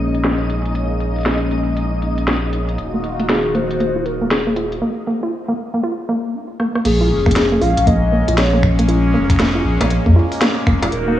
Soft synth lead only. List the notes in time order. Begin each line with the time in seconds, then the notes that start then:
3.29 G#4
3.55 C5
4.05 A#4
4.31 G#4
6.85 G#4
7.61 F5
7.87 D#5
8.38 C#5
10.92 A#4